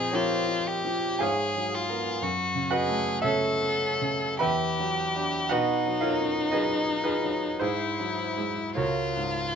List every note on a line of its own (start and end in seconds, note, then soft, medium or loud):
0.00 1.17 A#2 medium
0.00 0.13 F3 soft
0.00 0.35 C4 soft
0.00 0.10 G#4 medium
0.00 0.17 G#4 medium
0.00 0.11 C5 medium
0.00 0.13 D#5 medium
0.11 0.70 F3 soft
0.11 0.69 F4 medium
0.11 1.17 G4 medium
0.11 1.17 A#4 medium
0.11 1.19 C#5 medium
0.48 1.07 F4 soft
0.67 1.24 G4 medium
0.85 1.22 F3 soft
1.19 2.19 G#2 medium
1.19 2.18 G#4 medium
1.19 1.76 G#4 medium
1.19 2.18 C#5 medium
1.19 2.18 F5 medium
1.19 2.22 G#5 medium
1.56 2.10 F#3 soft
1.75 2.25 F4 medium
1.89 2.19 B3 soft
1.89 2.19 A#4 soft
2.22 4.37 F#2 medium
2.22 2.75 F#4 medium
2.55 3.10 C#3 soft
2.71 3.20 F#4 medium
2.71 3.23 G#4 medium
2.71 3.20 B4 medium
2.71 3.20 D#5 medium
2.71 3.23 F#5 medium
2.88 3.46 A3 soft
3.22 3.86 C#3 soft
3.22 4.37 A4 medium
3.22 4.39 A4 medium
3.22 4.37 C#5 medium
3.22 4.39 E5 medium
3.61 4.26 C#4 soft
4.02 4.42 C#3 soft
4.39 5.48 E2 medium
4.39 5.54 G4 medium
4.39 5.47 B4 medium
4.39 5.47 E5 medium
4.39 5.47 G5 medium
4.39 5.51 B5 medium
4.79 5.38 F#3 soft
5.16 5.48 D4 soft
5.16 5.49 G4 soft
5.49 7.57 B2 medium
5.49 7.62 D#4 medium
5.49 5.99 F#4 medium
5.49 5.99 B4 medium
5.49 5.99 D#5 medium
5.49 6.02 F#5 medium
5.86 6.40 F#3 soft
6.01 6.50 F4 medium
6.01 6.50 A#4 medium
6.01 6.50 C#5 medium
6.01 6.53 F5 medium
6.20 6.74 C#4 soft
6.51 7.10 F#3 soft
6.51 7.02 G#4 medium
6.51 7.02 B4 medium
6.51 7.05 D#5 medium
6.88 7.46 D#4 soft
7.04 7.57 F4 medium
7.04 7.57 G#4 medium
7.04 7.60 B4 medium
7.24 7.61 F#3 soft
7.59 8.74 G#2 medium
7.59 8.36 E4 medium
7.59 8.76 E4 medium
7.59 8.73 G#4 medium
7.59 8.76 C5 medium
7.99 8.61 F#3 soft
8.37 8.73 G#3 soft
8.37 8.73 E4 soft
8.75 9.55 C#2 soft
8.75 9.55 F4 medium
8.75 9.55 F#4 medium
8.75 9.55 A#4 medium
8.75 9.55 C#5 medium
9.17 9.55 G#2 soft